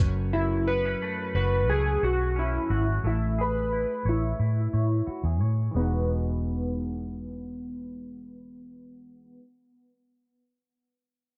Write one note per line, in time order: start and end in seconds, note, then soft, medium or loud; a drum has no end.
0.00 0.94 F#1 medium
0.00 0.33 F#2 medium
0.00 0.71 A3 medium
0.00 0.67 C#4 medium
0.00 1.35 F#4 medium
0.00 kick loud
0.33 3.04 F#2 medium
0.33 0.68 E4 medium
0.67 0.85 B3 medium
0.67 1.34 B4 medium
0.85 2.35 C#4 soft
1.02 1.69 A3 medium
1.34 1.69 F#1 medium
1.34 2.02 F#4 medium
1.34 1.70 B4 medium
1.69 1.96 C#2 medium
1.69 3.04 A3 medium
1.69 2.04 G#4 medium
2.03 2.57 B1 medium
2.03 2.69 F#4 medium
2.03 2.38 F#4 medium
2.36 3.38 C#4 medium
2.36 2.85 E4 medium
2.70 2.97 G#1 medium
2.70 3.11 F#4 medium
3.04 3.84 A1 medium
3.04 5.71 A3 medium
3.04 3.40 E4 medium
3.38 5.07 G#4 medium
3.38 4.09 B4 medium
3.73 4.39 E4 medium
4.05 4.32 A1 medium
4.05 5.38 E4 medium
4.05 4.72 C#5 medium
4.39 4.66 A2 medium
4.39 5.76 E4 medium
4.73 5.00 A2 medium
4.73 5.39 C#5 medium
5.07 5.24 F#4 medium
5.07 muted fingered electric bass stroke soft
5.23 5.42 E2 medium
5.23 5.79 G#4 soft
5.41 5.68 A2 medium
5.41 5.81 C#5 medium
5.71 9.38 E1 medium
5.71 9.38 E3 medium
5.71 9.41 G#3 medium
5.76 9.39 B3 medium
5.76 9.44 D#4 medium
5.76 9.46 F#4 medium